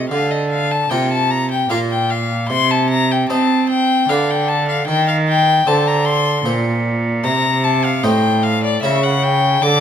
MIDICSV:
0, 0, Header, 1, 4, 480
1, 0, Start_track
1, 0, Tempo, 793651
1, 65, Time_signature, 3, 2, 24, 8
1, 5928, End_track
2, 0, Start_track
2, 0, Title_t, "Violin"
2, 0, Program_c, 0, 40
2, 57, Note_on_c, 0, 77, 88
2, 186, Note_on_c, 0, 75, 79
2, 195, Note_off_c, 0, 77, 0
2, 300, Note_off_c, 0, 75, 0
2, 304, Note_on_c, 0, 77, 88
2, 430, Note_on_c, 0, 81, 77
2, 439, Note_off_c, 0, 77, 0
2, 545, Note_on_c, 0, 79, 84
2, 554, Note_off_c, 0, 81, 0
2, 667, Note_off_c, 0, 79, 0
2, 674, Note_on_c, 0, 81, 85
2, 789, Note_on_c, 0, 82, 92
2, 798, Note_off_c, 0, 81, 0
2, 909, Note_off_c, 0, 82, 0
2, 915, Note_on_c, 0, 79, 81
2, 1025, Note_off_c, 0, 79, 0
2, 1029, Note_on_c, 0, 77, 89
2, 1077, Note_off_c, 0, 77, 0
2, 1154, Note_on_c, 0, 79, 84
2, 1269, Note_on_c, 0, 77, 85
2, 1278, Note_off_c, 0, 79, 0
2, 1503, Note_off_c, 0, 77, 0
2, 1507, Note_on_c, 0, 84, 100
2, 1637, Note_on_c, 0, 81, 90
2, 1646, Note_off_c, 0, 84, 0
2, 1751, Note_off_c, 0, 81, 0
2, 1755, Note_on_c, 0, 82, 101
2, 1880, Note_on_c, 0, 79, 89
2, 1889, Note_off_c, 0, 82, 0
2, 1986, Note_off_c, 0, 79, 0
2, 1990, Note_on_c, 0, 81, 90
2, 2228, Note_off_c, 0, 81, 0
2, 2234, Note_on_c, 0, 79, 98
2, 2475, Note_on_c, 0, 77, 91
2, 2484, Note_off_c, 0, 79, 0
2, 2599, Note_on_c, 0, 79, 88
2, 2608, Note_off_c, 0, 77, 0
2, 2711, Note_on_c, 0, 81, 90
2, 2720, Note_off_c, 0, 79, 0
2, 2829, Note_off_c, 0, 81, 0
2, 2833, Note_on_c, 0, 77, 85
2, 2943, Note_off_c, 0, 77, 0
2, 2946, Note_on_c, 0, 79, 100
2, 3067, Note_off_c, 0, 79, 0
2, 3072, Note_on_c, 0, 77, 89
2, 3120, Note_off_c, 0, 77, 0
2, 3192, Note_on_c, 0, 79, 110
2, 3428, Note_on_c, 0, 81, 97
2, 3437, Note_off_c, 0, 79, 0
2, 3552, Note_on_c, 0, 82, 93
2, 3561, Note_off_c, 0, 81, 0
2, 3661, Note_on_c, 0, 84, 99
2, 3670, Note_off_c, 0, 82, 0
2, 3900, Note_off_c, 0, 84, 0
2, 4377, Note_on_c, 0, 82, 106
2, 4619, Note_on_c, 0, 81, 93
2, 4628, Note_off_c, 0, 82, 0
2, 4742, Note_on_c, 0, 77, 87
2, 4751, Note_off_c, 0, 81, 0
2, 4857, Note_on_c, 0, 79, 99
2, 4866, Note_off_c, 0, 77, 0
2, 5096, Note_on_c, 0, 77, 99
2, 5105, Note_off_c, 0, 79, 0
2, 5218, Note_off_c, 0, 77, 0
2, 5223, Note_on_c, 0, 74, 101
2, 5332, Note_off_c, 0, 74, 0
2, 5336, Note_on_c, 0, 76, 98
2, 5463, Note_on_c, 0, 78, 99
2, 5472, Note_off_c, 0, 76, 0
2, 5579, Note_on_c, 0, 79, 104
2, 5588, Note_off_c, 0, 78, 0
2, 5819, Note_on_c, 0, 86, 112
2, 5828, Note_off_c, 0, 79, 0
2, 5928, Note_off_c, 0, 86, 0
2, 5928, End_track
3, 0, Start_track
3, 0, Title_t, "Harpsichord"
3, 0, Program_c, 1, 6
3, 69, Note_on_c, 1, 50, 51
3, 526, Note_off_c, 1, 50, 0
3, 550, Note_on_c, 1, 48, 54
3, 550, Note_on_c, 1, 58, 45
3, 552, Note_on_c, 1, 65, 46
3, 555, Note_on_c, 1, 70, 52
3, 895, Note_off_c, 1, 58, 0
3, 897, Note_off_c, 1, 65, 0
3, 898, Note_off_c, 1, 70, 0
3, 1005, Note_off_c, 1, 48, 0
3, 1029, Note_on_c, 1, 58, 44
3, 1031, Note_on_c, 1, 46, 56
3, 1032, Note_on_c, 1, 65, 47
3, 1034, Note_on_c, 1, 70, 52
3, 1376, Note_off_c, 1, 58, 0
3, 1378, Note_off_c, 1, 65, 0
3, 1379, Note_off_c, 1, 70, 0
3, 1487, Note_off_c, 1, 46, 0
3, 1512, Note_on_c, 1, 48, 60
3, 1970, Note_off_c, 1, 48, 0
3, 1995, Note_on_c, 1, 60, 58
3, 1998, Note_on_c, 1, 63, 49
3, 2000, Note_on_c, 1, 72, 54
3, 2342, Note_off_c, 1, 63, 0
3, 2343, Note_off_c, 1, 72, 0
3, 2451, Note_off_c, 1, 60, 0
3, 2476, Note_on_c, 1, 50, 60
3, 2480, Note_on_c, 1, 62, 48
3, 2482, Note_on_c, 1, 71, 48
3, 2929, Note_off_c, 1, 50, 0
3, 2931, Note_off_c, 1, 62, 0
3, 2932, Note_off_c, 1, 71, 0
3, 2953, Note_on_c, 1, 51, 61
3, 3407, Note_off_c, 1, 51, 0
3, 3430, Note_on_c, 1, 50, 63
3, 3431, Note_on_c, 1, 60, 52
3, 3436, Note_on_c, 1, 72, 54
3, 3772, Note_off_c, 1, 60, 0
3, 3775, Note_off_c, 1, 72, 0
3, 3879, Note_off_c, 1, 50, 0
3, 3903, Note_on_c, 1, 46, 64
3, 3905, Note_on_c, 1, 60, 54
3, 3907, Note_on_c, 1, 72, 56
3, 4247, Note_off_c, 1, 60, 0
3, 4248, Note_off_c, 1, 72, 0
3, 4355, Note_off_c, 1, 46, 0
3, 4379, Note_on_c, 1, 48, 66
3, 4834, Note_off_c, 1, 48, 0
3, 4861, Note_on_c, 1, 45, 64
3, 4861, Note_on_c, 1, 57, 54
3, 4862, Note_on_c, 1, 63, 54
3, 4864, Note_on_c, 1, 72, 56
3, 5207, Note_off_c, 1, 57, 0
3, 5208, Note_off_c, 1, 63, 0
3, 5209, Note_off_c, 1, 72, 0
3, 5317, Note_off_c, 1, 45, 0
3, 5341, Note_on_c, 1, 49, 65
3, 5342, Note_on_c, 1, 61, 54
3, 5346, Note_on_c, 1, 64, 51
3, 5350, Note_on_c, 1, 70, 50
3, 5800, Note_off_c, 1, 49, 0
3, 5801, Note_off_c, 1, 61, 0
3, 5803, Note_off_c, 1, 64, 0
3, 5805, Note_off_c, 1, 70, 0
3, 5824, Note_on_c, 1, 50, 63
3, 5928, Note_off_c, 1, 50, 0
3, 5928, End_track
4, 0, Start_track
4, 0, Title_t, "Cello"
4, 0, Program_c, 2, 42
4, 64, Note_on_c, 2, 50, 75
4, 538, Note_off_c, 2, 50, 0
4, 549, Note_on_c, 2, 48, 69
4, 1019, Note_off_c, 2, 48, 0
4, 1029, Note_on_c, 2, 46, 69
4, 1510, Note_on_c, 2, 48, 83
4, 1519, Note_off_c, 2, 46, 0
4, 1990, Note_off_c, 2, 48, 0
4, 1994, Note_on_c, 2, 60, 71
4, 2465, Note_off_c, 2, 60, 0
4, 2472, Note_on_c, 2, 50, 73
4, 2941, Note_off_c, 2, 50, 0
4, 2950, Note_on_c, 2, 51, 84
4, 3420, Note_off_c, 2, 51, 0
4, 3428, Note_on_c, 2, 50, 78
4, 3893, Note_off_c, 2, 50, 0
4, 3901, Note_on_c, 2, 46, 78
4, 4379, Note_on_c, 2, 48, 89
4, 4388, Note_off_c, 2, 46, 0
4, 4858, Note_on_c, 2, 45, 78
4, 4867, Note_off_c, 2, 48, 0
4, 5336, Note_off_c, 2, 45, 0
4, 5340, Note_on_c, 2, 49, 75
4, 5814, Note_off_c, 2, 49, 0
4, 5820, Note_on_c, 2, 50, 90
4, 5928, Note_off_c, 2, 50, 0
4, 5928, End_track
0, 0, End_of_file